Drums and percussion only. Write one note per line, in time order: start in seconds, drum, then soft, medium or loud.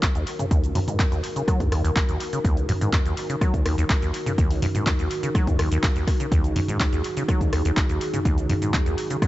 0.03 kick loud
0.03 clap loud
0.03 closed hi-hat medium
0.03 shaker medium
0.15 closed hi-hat soft
0.15 shaker soft
0.27 open hi-hat loud
0.39 closed hi-hat medium
0.39 mid tom medium
0.39 shaker medium
0.51 kick loud
0.51 closed hi-hat medium
0.51 shaker medium
0.64 closed hi-hat soft
0.64 shaker soft
0.75 mid tom medium
0.75 open hi-hat loud
0.88 closed hi-hat soft
0.88 mid tom medium
0.88 shaker medium
0.99 kick loud
0.99 clap loud
0.99 closed hi-hat soft
0.99 shaker medium
1.12 closed hi-hat soft
1.12 shaker soft
1.24 open hi-hat loud
1.36 closed hi-hat medium
1.36 shaker medium
1.48 kick loud
1.48 cross-stick medium
1.48 closed hi-hat medium
1.48 shaker medium
1.60 kick medium
1.60 closed hi-hat soft
1.60 mid tom medium
1.60 shaker soft
1.72 cross-stick medium
1.72 open hi-hat loud
1.85 closed hi-hat soft
1.85 shaker medium
1.96 kick loud
1.96 clap loud
1.96 closed hi-hat soft
1.96 shaker soft
2.09 closed hi-hat soft
2.09 shaker soft
2.20 open hi-hat loud
2.33 closed hi-hat soft
2.33 shaker medium
2.45 kick loud
2.45 closed hi-hat medium
2.45 shaker medium
2.57 closed hi-hat soft
2.57 shaker soft
2.69 mid tom medium
2.69 open hi-hat loud
2.81 closed hi-hat soft
2.81 mid tom medium
2.81 shaker medium
2.93 kick loud
2.93 clap loud
2.93 closed hi-hat soft
2.93 shaker medium
3.06 closed hi-hat soft
3.06 shaker soft
3.17 open hi-hat loud
3.30 closed hi-hat soft
3.30 shaker medium
3.41 kick loud
3.41 cross-stick medium
3.41 closed hi-hat soft
3.41 shaker medium
3.54 kick medium
3.54 closed hi-hat soft
3.54 shaker soft
3.66 cross-stick medium
3.66 open hi-hat loud
3.78 closed hi-hat soft
3.78 shaker medium
3.90 kick loud
3.90 clap loud
3.90 closed hi-hat soft
3.90 shaker soft
4.02 closed hi-hat soft
4.02 shaker soft
4.14 open hi-hat loud
4.26 closed hi-hat soft
4.26 mid tom medium
4.26 shaker medium
4.38 kick loud
4.38 closed hi-hat soft
4.38 shaker medium
4.51 open hi-hat medium
4.51 shaker soft
4.62 mid tom medium
4.62 open hi-hat loud
4.75 closed hi-hat soft
4.75 mid tom medium
4.75 shaker medium
4.86 kick loud
4.86 clap loud
4.86 closed hi-hat soft
4.86 shaker medium
4.99 closed hi-hat soft
4.99 shaker soft
5.11 open hi-hat loud
5.23 closed hi-hat soft
5.23 shaker medium
5.35 kick loud
5.35 cross-stick medium
5.35 closed hi-hat soft
5.35 shaker medium
5.47 kick medium
5.47 closed hi-hat soft
5.47 mid tom medium
5.47 shaker soft
5.59 cross-stick medium
5.59 open hi-hat loud
5.72 closed hi-hat soft
5.72 shaker medium
5.83 kick loud
5.83 clap loud
5.83 closed hi-hat soft
5.83 shaker medium
5.96 closed hi-hat soft
5.96 shaker soft
6.07 kick medium
6.07 cross-stick medium
6.07 open hi-hat loud
6.20 closed hi-hat soft
6.20 shaker medium
6.32 kick loud
6.32 closed hi-hat soft
6.32 shaker medium
6.44 closed hi-hat soft
6.44 shaker soft
6.56 mid tom medium
6.56 open hi-hat loud
6.68 closed hi-hat soft
6.68 mid tom medium
6.68 shaker medium
6.80 kick loud
6.80 clap loud
6.80 closed hi-hat soft
6.80 shaker medium
6.93 closed hi-hat soft
6.93 shaker soft
7.04 open hi-hat loud
7.17 closed hi-hat soft
7.17 shaker medium
7.28 kick loud
7.28 cross-stick medium
7.28 closed hi-hat medium
7.28 shaker medium
7.41 kick medium
7.41 closed hi-hat soft
7.41 shaker soft
7.53 cross-stick medium
7.53 open hi-hat loud
7.65 closed hi-hat soft
7.65 shaker medium
7.77 kick loud
7.77 clap loud
7.77 closed hi-hat soft
7.77 shaker medium
7.89 closed hi-hat soft
7.89 shaker soft
8.01 open hi-hat loud
8.14 closed hi-hat soft
8.14 mid tom medium
8.14 shaker medium
8.25 kick loud
8.25 closed hi-hat medium
8.25 shaker medium
8.38 closed hi-hat soft
8.38 shaker soft
8.49 mid tom medium
8.49 open hi-hat loud
8.62 closed hi-hat soft
8.62 mid tom medium
8.62 shaker medium
8.74 kick loud
8.74 clap loud
8.74 closed hi-hat soft
8.74 shaker medium
8.86 closed hi-hat soft
8.86 shaker soft
8.98 open hi-hat loud
9.10 closed hi-hat medium
9.10 shaker medium
9.22 kick loud
9.22 cross-stick medium
9.22 closed hi-hat medium
9.22 shaker medium